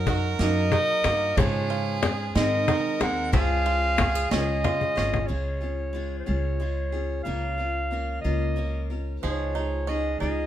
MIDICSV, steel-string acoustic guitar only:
0, 0, Header, 1, 2, 480
1, 0, Start_track
1, 0, Key_signature, -5, "major"
1, 0, Tempo, 655022
1, 1005, Time_signature, 6, 3, 24, 8
1, 7668, End_track
2, 0, Start_track
2, 0, Title_t, "Steel-string acoustic guitar"
2, 0, Program_c, 0, 25
2, 47, Note_on_c, 0, 54, 73
2, 56, Note_on_c, 0, 63, 80
2, 61, Note_on_c, 0, 66, 78
2, 64, Note_on_c, 0, 70, 84
2, 284, Note_off_c, 0, 70, 0
2, 287, Note_off_c, 0, 54, 0
2, 290, Note_off_c, 0, 66, 0
2, 291, Note_off_c, 0, 63, 0
2, 293, Note_on_c, 0, 70, 68
2, 299, Note_on_c, 0, 66, 69
2, 303, Note_on_c, 0, 63, 71
2, 307, Note_on_c, 0, 54, 61
2, 766, Note_off_c, 0, 70, 0
2, 772, Note_off_c, 0, 66, 0
2, 774, Note_off_c, 0, 63, 0
2, 774, Note_on_c, 0, 70, 63
2, 776, Note_off_c, 0, 54, 0
2, 785, Note_on_c, 0, 66, 45
2, 791, Note_on_c, 0, 63, 46
2, 1010, Note_off_c, 0, 70, 0
2, 1015, Note_off_c, 0, 66, 0
2, 1016, Note_on_c, 0, 44, 78
2, 1018, Note_off_c, 0, 63, 0
2, 1018, Note_on_c, 0, 49, 77
2, 1024, Note_on_c, 0, 56, 93
2, 1025, Note_on_c, 0, 61, 85
2, 1028, Note_on_c, 0, 65, 81
2, 1030, Note_on_c, 0, 68, 82
2, 1485, Note_off_c, 0, 56, 0
2, 1486, Note_off_c, 0, 61, 0
2, 1488, Note_on_c, 0, 56, 67
2, 1490, Note_off_c, 0, 44, 0
2, 1491, Note_off_c, 0, 49, 0
2, 1495, Note_on_c, 0, 61, 67
2, 1496, Note_off_c, 0, 65, 0
2, 1504, Note_off_c, 0, 68, 0
2, 1505, Note_on_c, 0, 65, 66
2, 1507, Note_on_c, 0, 68, 63
2, 1714, Note_off_c, 0, 68, 0
2, 1721, Note_off_c, 0, 65, 0
2, 1723, Note_off_c, 0, 56, 0
2, 1723, Note_on_c, 0, 68, 64
2, 1724, Note_on_c, 0, 63, 72
2, 1725, Note_off_c, 0, 61, 0
2, 1728, Note_on_c, 0, 60, 61
2, 1732, Note_on_c, 0, 56, 60
2, 1733, Note_on_c, 0, 51, 60
2, 1735, Note_on_c, 0, 44, 54
2, 2195, Note_off_c, 0, 63, 0
2, 2196, Note_off_c, 0, 68, 0
2, 2199, Note_on_c, 0, 68, 49
2, 2202, Note_off_c, 0, 60, 0
2, 2204, Note_on_c, 0, 63, 45
2, 2209, Note_off_c, 0, 51, 0
2, 2210, Note_off_c, 0, 44, 0
2, 2211, Note_on_c, 0, 60, 47
2, 2212, Note_off_c, 0, 56, 0
2, 2215, Note_on_c, 0, 56, 42
2, 2429, Note_off_c, 0, 56, 0
2, 2436, Note_on_c, 0, 49, 77
2, 2438, Note_off_c, 0, 68, 0
2, 2438, Note_on_c, 0, 56, 75
2, 2442, Note_off_c, 0, 60, 0
2, 2442, Note_off_c, 0, 63, 0
2, 2444, Note_on_c, 0, 61, 73
2, 2445, Note_on_c, 0, 65, 86
2, 2446, Note_on_c, 0, 68, 84
2, 2903, Note_off_c, 0, 56, 0
2, 2911, Note_on_c, 0, 56, 64
2, 2913, Note_off_c, 0, 61, 0
2, 2917, Note_off_c, 0, 65, 0
2, 2920, Note_off_c, 0, 49, 0
2, 2921, Note_on_c, 0, 61, 60
2, 2923, Note_off_c, 0, 68, 0
2, 2926, Note_on_c, 0, 65, 61
2, 2932, Note_on_c, 0, 68, 75
2, 3148, Note_off_c, 0, 68, 0
2, 3150, Note_off_c, 0, 65, 0
2, 3155, Note_off_c, 0, 61, 0
2, 3157, Note_on_c, 0, 68, 70
2, 3158, Note_off_c, 0, 56, 0
2, 3158, Note_on_c, 0, 65, 69
2, 3164, Note_on_c, 0, 61, 63
2, 3166, Note_on_c, 0, 56, 64
2, 3169, Note_on_c, 0, 49, 56
2, 3622, Note_off_c, 0, 68, 0
2, 3630, Note_on_c, 0, 68, 55
2, 3634, Note_off_c, 0, 65, 0
2, 3643, Note_on_c, 0, 65, 52
2, 3644, Note_off_c, 0, 61, 0
2, 3645, Note_off_c, 0, 56, 0
2, 3647, Note_off_c, 0, 49, 0
2, 3651, Note_on_c, 0, 61, 43
2, 3865, Note_off_c, 0, 61, 0
2, 3870, Note_off_c, 0, 65, 0
2, 3870, Note_on_c, 0, 49, 55
2, 3871, Note_off_c, 0, 68, 0
2, 3874, Note_on_c, 0, 56, 52
2, 3874, Note_on_c, 0, 61, 69
2, 3879, Note_on_c, 0, 65, 59
2, 3880, Note_on_c, 0, 68, 68
2, 4099, Note_off_c, 0, 68, 0
2, 4106, Note_off_c, 0, 65, 0
2, 4107, Note_on_c, 0, 68, 41
2, 4115, Note_on_c, 0, 65, 42
2, 4117, Note_off_c, 0, 49, 0
2, 4119, Note_off_c, 0, 56, 0
2, 4119, Note_off_c, 0, 61, 0
2, 4127, Note_on_c, 0, 61, 37
2, 4344, Note_on_c, 0, 56, 54
2, 4348, Note_off_c, 0, 61, 0
2, 4350, Note_off_c, 0, 65, 0
2, 4356, Note_off_c, 0, 68, 0
2, 4357, Note_on_c, 0, 61, 55
2, 4359, Note_on_c, 0, 65, 52
2, 4366, Note_on_c, 0, 68, 50
2, 4580, Note_off_c, 0, 68, 0
2, 4584, Note_off_c, 0, 61, 0
2, 4584, Note_off_c, 0, 65, 0
2, 4588, Note_on_c, 0, 68, 52
2, 4590, Note_off_c, 0, 56, 0
2, 4593, Note_on_c, 0, 61, 49
2, 4593, Note_on_c, 0, 65, 50
2, 4599, Note_on_c, 0, 56, 48
2, 4600, Note_on_c, 0, 49, 43
2, 4825, Note_off_c, 0, 56, 0
2, 4830, Note_off_c, 0, 61, 0
2, 4833, Note_on_c, 0, 56, 54
2, 4837, Note_off_c, 0, 68, 0
2, 4839, Note_off_c, 0, 65, 0
2, 4839, Note_on_c, 0, 61, 46
2, 4842, Note_off_c, 0, 49, 0
2, 4847, Note_on_c, 0, 65, 52
2, 4852, Note_on_c, 0, 68, 48
2, 5064, Note_off_c, 0, 68, 0
2, 5073, Note_on_c, 0, 68, 43
2, 5074, Note_off_c, 0, 65, 0
2, 5079, Note_off_c, 0, 56, 0
2, 5080, Note_off_c, 0, 61, 0
2, 5083, Note_on_c, 0, 65, 41
2, 5089, Note_on_c, 0, 61, 35
2, 5310, Note_off_c, 0, 61, 0
2, 5312, Note_on_c, 0, 49, 55
2, 5315, Note_off_c, 0, 65, 0
2, 5319, Note_off_c, 0, 68, 0
2, 5319, Note_on_c, 0, 58, 61
2, 5319, Note_on_c, 0, 61, 58
2, 5324, Note_on_c, 0, 65, 73
2, 5327, Note_on_c, 0, 70, 65
2, 5544, Note_off_c, 0, 70, 0
2, 5553, Note_off_c, 0, 65, 0
2, 5553, Note_on_c, 0, 70, 42
2, 5559, Note_off_c, 0, 49, 0
2, 5562, Note_off_c, 0, 58, 0
2, 5562, Note_off_c, 0, 61, 0
2, 5562, Note_on_c, 0, 65, 40
2, 5570, Note_on_c, 0, 61, 40
2, 5793, Note_off_c, 0, 61, 0
2, 5795, Note_on_c, 0, 58, 47
2, 5799, Note_off_c, 0, 65, 0
2, 5799, Note_off_c, 0, 70, 0
2, 5802, Note_on_c, 0, 61, 48
2, 5808, Note_on_c, 0, 65, 54
2, 5812, Note_on_c, 0, 70, 63
2, 6031, Note_off_c, 0, 70, 0
2, 6033, Note_off_c, 0, 65, 0
2, 6035, Note_off_c, 0, 61, 0
2, 6037, Note_off_c, 0, 58, 0
2, 6039, Note_on_c, 0, 70, 52
2, 6042, Note_on_c, 0, 65, 59
2, 6044, Note_on_c, 0, 61, 47
2, 6046, Note_on_c, 0, 58, 49
2, 6050, Note_on_c, 0, 49, 46
2, 6263, Note_off_c, 0, 58, 0
2, 6269, Note_off_c, 0, 61, 0
2, 6272, Note_on_c, 0, 58, 51
2, 6278, Note_off_c, 0, 65, 0
2, 6278, Note_on_c, 0, 61, 53
2, 6283, Note_off_c, 0, 70, 0
2, 6287, Note_on_c, 0, 65, 55
2, 6288, Note_off_c, 0, 49, 0
2, 6291, Note_on_c, 0, 70, 49
2, 6512, Note_off_c, 0, 70, 0
2, 6519, Note_off_c, 0, 58, 0
2, 6521, Note_off_c, 0, 65, 0
2, 6521, Note_on_c, 0, 70, 39
2, 6522, Note_off_c, 0, 61, 0
2, 6530, Note_on_c, 0, 65, 38
2, 6539, Note_on_c, 0, 61, 35
2, 6762, Note_on_c, 0, 49, 58
2, 6764, Note_off_c, 0, 65, 0
2, 6764, Note_off_c, 0, 70, 0
2, 6766, Note_off_c, 0, 61, 0
2, 6766, Note_on_c, 0, 56, 59
2, 6769, Note_on_c, 0, 63, 70
2, 6773, Note_on_c, 0, 65, 63
2, 6775, Note_on_c, 0, 68, 70
2, 6994, Note_off_c, 0, 68, 0
2, 7002, Note_on_c, 0, 68, 45
2, 7004, Note_off_c, 0, 49, 0
2, 7004, Note_off_c, 0, 65, 0
2, 7007, Note_off_c, 0, 56, 0
2, 7008, Note_off_c, 0, 63, 0
2, 7013, Note_on_c, 0, 65, 43
2, 7020, Note_on_c, 0, 63, 37
2, 7235, Note_off_c, 0, 63, 0
2, 7239, Note_on_c, 0, 56, 53
2, 7243, Note_off_c, 0, 65, 0
2, 7244, Note_on_c, 0, 63, 54
2, 7245, Note_off_c, 0, 68, 0
2, 7251, Note_on_c, 0, 65, 51
2, 7258, Note_on_c, 0, 68, 54
2, 7476, Note_off_c, 0, 68, 0
2, 7481, Note_off_c, 0, 63, 0
2, 7483, Note_off_c, 0, 56, 0
2, 7483, Note_off_c, 0, 65, 0
2, 7485, Note_on_c, 0, 68, 54
2, 7490, Note_on_c, 0, 63, 48
2, 7491, Note_on_c, 0, 65, 59
2, 7495, Note_on_c, 0, 56, 50
2, 7499, Note_on_c, 0, 49, 48
2, 7668, Note_off_c, 0, 49, 0
2, 7668, Note_off_c, 0, 56, 0
2, 7668, Note_off_c, 0, 63, 0
2, 7668, Note_off_c, 0, 65, 0
2, 7668, Note_off_c, 0, 68, 0
2, 7668, End_track
0, 0, End_of_file